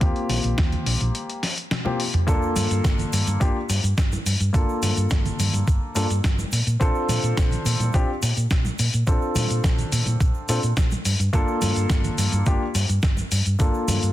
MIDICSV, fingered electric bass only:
0, 0, Header, 1, 2, 480
1, 0, Start_track
1, 0, Key_signature, -2, "minor"
1, 0, Tempo, 566038
1, 14, Time_signature, 4, 2, 24, 8
1, 11979, End_track
2, 0, Start_track
2, 0, Title_t, "Fingered electric bass"
2, 0, Program_c, 0, 33
2, 12, Note_on_c, 0, 39, 91
2, 87, Note_off_c, 0, 39, 0
2, 252, Note_on_c, 0, 34, 75
2, 327, Note_off_c, 0, 34, 0
2, 372, Note_on_c, 0, 34, 79
2, 445, Note_off_c, 0, 34, 0
2, 492, Note_on_c, 0, 39, 92
2, 640, Note_off_c, 0, 39, 0
2, 731, Note_on_c, 0, 34, 90
2, 807, Note_off_c, 0, 34, 0
2, 855, Note_on_c, 0, 34, 79
2, 927, Note_off_c, 0, 34, 0
2, 1932, Note_on_c, 0, 31, 91
2, 2007, Note_off_c, 0, 31, 0
2, 2174, Note_on_c, 0, 43, 78
2, 2248, Note_off_c, 0, 43, 0
2, 2295, Note_on_c, 0, 43, 79
2, 2367, Note_off_c, 0, 43, 0
2, 2412, Note_on_c, 0, 31, 95
2, 2560, Note_off_c, 0, 31, 0
2, 2651, Note_on_c, 0, 43, 90
2, 2727, Note_off_c, 0, 43, 0
2, 2775, Note_on_c, 0, 43, 77
2, 2846, Note_off_c, 0, 43, 0
2, 2892, Note_on_c, 0, 31, 77
2, 2967, Note_off_c, 0, 31, 0
2, 3133, Note_on_c, 0, 43, 94
2, 3207, Note_off_c, 0, 43, 0
2, 3253, Note_on_c, 0, 43, 98
2, 3326, Note_off_c, 0, 43, 0
2, 3372, Note_on_c, 0, 31, 85
2, 3521, Note_off_c, 0, 31, 0
2, 3611, Note_on_c, 0, 43, 86
2, 3687, Note_off_c, 0, 43, 0
2, 3734, Note_on_c, 0, 43, 81
2, 3806, Note_off_c, 0, 43, 0
2, 3853, Note_on_c, 0, 31, 94
2, 3927, Note_off_c, 0, 31, 0
2, 4092, Note_on_c, 0, 43, 77
2, 4167, Note_off_c, 0, 43, 0
2, 4213, Note_on_c, 0, 43, 80
2, 4286, Note_off_c, 0, 43, 0
2, 4333, Note_on_c, 0, 31, 93
2, 4481, Note_off_c, 0, 31, 0
2, 4573, Note_on_c, 0, 43, 91
2, 4648, Note_off_c, 0, 43, 0
2, 4693, Note_on_c, 0, 43, 79
2, 4766, Note_off_c, 0, 43, 0
2, 4814, Note_on_c, 0, 31, 77
2, 4888, Note_off_c, 0, 31, 0
2, 5052, Note_on_c, 0, 43, 97
2, 5127, Note_off_c, 0, 43, 0
2, 5175, Note_on_c, 0, 43, 100
2, 5247, Note_off_c, 0, 43, 0
2, 5293, Note_on_c, 0, 31, 87
2, 5441, Note_off_c, 0, 31, 0
2, 5532, Note_on_c, 0, 46, 87
2, 5607, Note_off_c, 0, 46, 0
2, 5654, Note_on_c, 0, 46, 81
2, 5726, Note_off_c, 0, 46, 0
2, 5773, Note_on_c, 0, 34, 95
2, 5848, Note_off_c, 0, 34, 0
2, 6011, Note_on_c, 0, 46, 80
2, 6086, Note_off_c, 0, 46, 0
2, 6132, Note_on_c, 0, 46, 81
2, 6205, Note_off_c, 0, 46, 0
2, 6254, Note_on_c, 0, 34, 96
2, 6401, Note_off_c, 0, 34, 0
2, 6492, Note_on_c, 0, 46, 92
2, 6567, Note_off_c, 0, 46, 0
2, 6614, Note_on_c, 0, 46, 81
2, 6686, Note_off_c, 0, 46, 0
2, 6735, Note_on_c, 0, 34, 81
2, 6808, Note_off_c, 0, 34, 0
2, 6975, Note_on_c, 0, 46, 98
2, 7049, Note_off_c, 0, 46, 0
2, 7097, Note_on_c, 0, 46, 97
2, 7168, Note_off_c, 0, 46, 0
2, 7215, Note_on_c, 0, 34, 89
2, 7362, Note_off_c, 0, 34, 0
2, 7456, Note_on_c, 0, 46, 86
2, 7529, Note_off_c, 0, 46, 0
2, 7581, Note_on_c, 0, 46, 83
2, 7649, Note_off_c, 0, 46, 0
2, 7695, Note_on_c, 0, 34, 94
2, 7768, Note_off_c, 0, 34, 0
2, 7937, Note_on_c, 0, 46, 78
2, 8010, Note_off_c, 0, 46, 0
2, 8059, Note_on_c, 0, 46, 79
2, 8129, Note_off_c, 0, 46, 0
2, 8174, Note_on_c, 0, 34, 94
2, 8321, Note_off_c, 0, 34, 0
2, 8415, Note_on_c, 0, 46, 91
2, 8489, Note_off_c, 0, 46, 0
2, 8538, Note_on_c, 0, 46, 79
2, 8608, Note_off_c, 0, 46, 0
2, 8654, Note_on_c, 0, 34, 78
2, 8728, Note_off_c, 0, 34, 0
2, 8894, Note_on_c, 0, 46, 93
2, 8968, Note_off_c, 0, 46, 0
2, 9017, Note_on_c, 0, 46, 100
2, 9088, Note_off_c, 0, 46, 0
2, 9134, Note_on_c, 0, 34, 87
2, 9281, Note_off_c, 0, 34, 0
2, 9372, Note_on_c, 0, 43, 88
2, 9447, Note_off_c, 0, 43, 0
2, 9495, Note_on_c, 0, 43, 79
2, 9567, Note_off_c, 0, 43, 0
2, 9613, Note_on_c, 0, 31, 94
2, 9688, Note_off_c, 0, 31, 0
2, 9853, Note_on_c, 0, 43, 78
2, 9927, Note_off_c, 0, 43, 0
2, 9972, Note_on_c, 0, 43, 80
2, 10045, Note_off_c, 0, 43, 0
2, 10091, Note_on_c, 0, 31, 96
2, 10240, Note_off_c, 0, 31, 0
2, 10328, Note_on_c, 0, 43, 88
2, 10405, Note_off_c, 0, 43, 0
2, 10450, Note_on_c, 0, 43, 80
2, 10524, Note_off_c, 0, 43, 0
2, 10572, Note_on_c, 0, 31, 81
2, 10647, Note_off_c, 0, 31, 0
2, 10811, Note_on_c, 0, 43, 96
2, 10886, Note_off_c, 0, 43, 0
2, 10933, Note_on_c, 0, 43, 96
2, 11006, Note_off_c, 0, 43, 0
2, 11051, Note_on_c, 0, 31, 89
2, 11200, Note_off_c, 0, 31, 0
2, 11293, Note_on_c, 0, 43, 89
2, 11367, Note_off_c, 0, 43, 0
2, 11415, Note_on_c, 0, 43, 81
2, 11487, Note_off_c, 0, 43, 0
2, 11533, Note_on_c, 0, 31, 97
2, 11607, Note_off_c, 0, 31, 0
2, 11773, Note_on_c, 0, 43, 77
2, 11848, Note_off_c, 0, 43, 0
2, 11895, Note_on_c, 0, 43, 79
2, 11967, Note_off_c, 0, 43, 0
2, 11979, End_track
0, 0, End_of_file